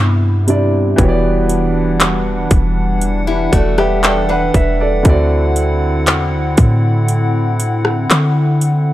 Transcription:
Already playing: G2 C3 G3 B3 D4 E4 B4
0.47 C3 G3 D4 E4 D5, closed hi-hat
0.96 E1 E3 G3 B3 D4 F#4 F#5, kick, closed hi-hat
1.01 G4 C#5
1.09 D5
1.49 closed hi-hat
2.00 clap, closed hi-hat
2.51 E1, kick, closed hi-hat
3.01 closed hi-hat
3.27 G3 E4
3.53 E1 A3 F#4 A4 D5, kick, closed hi-hat
3.78 B3 G4 B4 E5, cross-stick
4.04 A4 D5 G5, clap, closed hi-hat
4.29 D4 B4 F#5
4.54 E1 B4 E5, kick, closed hi-hat
4.81 A4 D5
5.03 D2 D3 C4 E4, kick, closed hi-hat
5.08 F#4 D5
5.56 closed hi-hat
6.07 E2, clap, closed hi-hat
6.33 D2
6.57 A2, kick, closed hi-hat
7.08 closed hi-hat
7.60 closed hi-hat
7.85 cross-stick
8.10 D3, clap, closed hi-hat
8.61 closed hi-hat

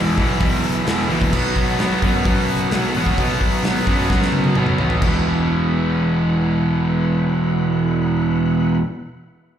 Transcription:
Already playing: E1 E2 B2 E3 B3 E4 B4 E5
0.17 B1 E2 B2 E3, kick
0.40 B1 E2 B2 E3, kick, open hi-hat
0.64 open hi-hat
0.86 E1 E2 B2 E3, snare, open hi-hat
1.09 A#1 E2 B2 E3, open hi-hat
1.22 kick
1.32 B1 B2 F#3 B3 F#4 C#5, kick, crash
1.56 B1, kick, open hi-hat
1.78 B1 B2 F#3 B3, snare, open hi-hat
2.02 F#2 B2 F#3 B3, kick, open hi-hat
2.25 F#2 B2 F#3 B3, kick, open hi-hat
2.49 open hi-hat
2.71 B1 B2 F#3 B3, snare, open hi-hat
2.95 A1 B2 F#3 B3, open hi-hat
3.06 kick
3.18 B1 B2 F#3 B3, kick, open hi-hat
3.41 B1, kick, open hi-hat
3.64 B1 B2 F#3 B3, snare, open hi-hat
3.87 F#2 B2 F#3 B3, kick, open hi-hat
4.10 F#2 B2 F#3 B3, kick, snare
4.22 snare
4.32 high tom
4.44 high tom
4.55 B1 B2 F#3 B3, mid tom
4.66 mid tom
4.78 A1 B2 F#3 B3, floor tom
4.90 floor tom
5.01 E1 E2 B2 E3 E4 B4 F#5, kick, floor tom, crash

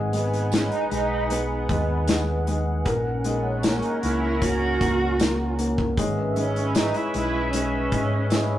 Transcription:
Already playing: G#1 G#3 D#4 B4 F#5 G#5
0.13 G#3 B3, closed hi-hat
0.33 closed hi-hat
0.52 G#3 C#4, snare, closed hi-hat, tambourine
0.72 D#4, closed hi-hat
0.91 B1 G#3 D#4, closed hi-hat
1.30 G#3 B3, closed hi-hat
1.69 D#2 G#3, kick, closed hi-hat
2.08 G#3, snare, closed hi-hat, tambourine
2.47 G#3, closed hi-hat
2.85 A#1 C#4 A#4, kick, closed hi-hat
3.24 G#3 B3, closed hi-hat
3.63 A#3 C#4, snare, closed hi-hat, tambourine
3.82 D#4, closed hi-hat
4.03 C#2 A#3 E4, closed hi-hat
4.42 A#3 F#4, kick, closed hi-hat
4.80 C#2 A#3, kick, closed hi-hat
5.20 A#3, snare, closed hi-hat, tambourine
5.58 A#3, closed hi-hat
5.78 kick
5.97 G#1 G#3 C#4 B4 E5, kick, closed hi-hat
6.36 G#3 C#4, closed hi-hat
6.56 closed hi-hat
6.75 G#3 D#4, snare, closed hi-hat, tambourine
6.94 E4, closed hi-hat
7.14 B1 G#3 E4, closed hi-hat
7.53 G#3 C#4, closed hi-hat
7.92 G#2 G#3, kick, closed hi-hat
8.30 G#3, snare, closed hi-hat, tambourine

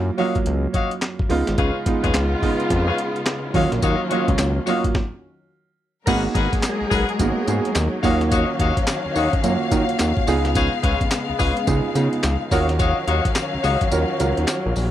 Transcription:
Already playing: F#2 F#3 A#3 C#4 E4 F4
0.18 F#3 A#3 C#4 F4 F#4 C#5 D#5 F5, open hi-hat
0.35 kick, closed hi-hat
0.46 C#2, closed hi-hat
0.73 F#4 C#5 D#5 F5, kick, closed hi-hat
0.91 closed hi-hat
1.02 snare, clap, closed hi-hat
1.19 kick
1.29 C#2 G#3 B3 D#4 F4, open hi-hat
1.47 G#1, snare, closed hi-hat
1.58 C#2 C#3 G#3 B3 F4 G#4 B4 C#5 F5, kick, closed hi-hat
1.86 G#3 B3 D#4 F4, kick, closed hi-hat
2.03 D#2 G#4 B4 C#5 F5, kick, closed hi-hat
2.14 C#2, snare, clap, closed hi-hat
2.42 G#3 B3 D#4 F4, kick, open hi-hat
2.60 closed hi-hat
2.70 F2, kick, closed hi-hat
2.88 G#4 B4 C#5 F5
2.98 closed hi-hat
3.16 closed hi-hat
3.26 snare, clap, closed hi-hat
3.54 D#2 D#3 F#3 A#3 C#4 F4 F#4 C#5 D#5 F5, kick, open hi-hat
3.72 A#1, snare, closed hi-hat
3.82 D#2 F#4 C#5 D#5 F5, kick, closed hi-hat, tambourine
4.10 F#3 A#3 C#4 F4 F#4 C#5 D#5 F5, closed hi-hat
4.28 C#2, kick, closed hi-hat
4.38 C#2, snare, clap, closed hi-hat, tambourine
4.66 F#3 A#3 C#4 F4 F#4 C#5 D#5 F5, snare, open hi-hat, tambourine
4.84 kick, closed hi-hat
4.95 kick, snare
6.06 G#1 F#3 G#3 A#3 B3 D#4 F#4 G#4 A#4 B4 F#5, kick, closed hi-hat, crash, tambourine
6.35 G#1 G#4 A#4 B4 F#5, kick, closed hi-hat
6.53 kick, closed hi-hat
6.63 snare, clap, closed hi-hat, tambourine
6.81 B1
6.90 B1 G#4 A#4 B4 F#5, kick, open hi-hat, tambourine
7.09 closed hi-hat
7.19 G#1 A#3 B3 D#4 F#4, kick, closed hi-hat, tambourine
7.47 G#2 A#3 B3 D#4 G#4, closed hi-hat, tambourine
7.65 closed hi-hat
7.75 D#2, snare, clap, closed hi-hat, tambourine
8.03 D#2 D#3 A#3 C#4 F4 F#4 C#5 D#5 F5, kick, open hi-hat, tambourine
8.21 snare, closed hi-hat
8.31 F#4 C#5 D#5 F5, kick, closed hi-hat, tambourine
8.59 D#2 F#4 C#5 D#5 F5, kick, closed hi-hat
8.77 kick, closed hi-hat
8.87 snare, clap, closed hi-hat, tambourine
9.05 D#2
9.15 D#2 F#4 C#5 D#5 F5, open hi-hat, tambourine
9.33 kick, closed hi-hat
9.43 F#2 A#3 C#4 F4 F#4, closed hi-hat, tambourine
9.71 D#3 A#3 C#4 F4 F#4, kick, closed hi-hat, tambourine
9.89 closed hi-hat
9.99 D#2, snare, clap, closed hi-hat, tambourine
10.17 kick
10.27 C#2 C#3 G#3 B3 D#4 F4 G#4, open hi-hat, tambourine
10.45 snare, closed hi-hat
10.55 G#4 B4 C#5 F5, kick, closed hi-hat, tambourine
10.83 C#2 G#4 B4 C#5 F5, kick, closed hi-hat
11.01 kick, closed hi-hat
11.11 snare, clap, closed hi-hat, tambourine
11.29 C#2
11.39 C#2 G#4 B4 C#5 F5, kick, open hi-hat, tambourine
11.57 closed hi-hat
11.67 C#2 B3 D#4 F4 G#4, kick, closed hi-hat, tambourine
11.95 C#3 B3 D#4 F4 G#4, closed hi-hat, tambourine
12.13 closed hi-hat
12.23 C#2, snare, clap, closed hi-hat, tambourine
12.51 D#2 D#3 F#3 C#4 F4 F#4 A#4 C#5 D#5 F5, kick, open hi-hat, tambourine
12.69 snare, closed hi-hat
12.79 F#4 C#5 D#5 F5, kick, closed hi-hat, tambourine
13.07 D#2 F#4 C#5 D#5 F5, closed hi-hat
13.25 kick, closed hi-hat
13.35 snare, clap, closed hi-hat, tambourine
13.54 C#2
13.63 C#2 F#4 C#5 D#5 F5, snare, open hi-hat, tambourine
13.81 kick, closed hi-hat
13.91 D#2 C#4 F4 F#4 A#4, closed hi-hat, tambourine
14.19 C#2 C#4 F4 F#4 A#4, closed hi-hat, tambourine
14.37 D#2, closed hi-hat
14.48 snare, clap, closed hi-hat, tambourine
14.66 A#1
14.76 A#1, open hi-hat, tambourine

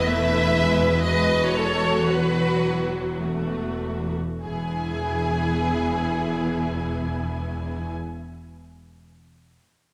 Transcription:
Already playing: E1 E2 E4
0.06 A3 B4 E5
0.58 G#3
1.01 G#3 D#5
1.05 F#4 B4
1.50 C#5
1.56 A4
2.05 F#3 F#4 B4
3.21 A3 F#4
4.43 E1 E2 B3 E4 G#4 G#5

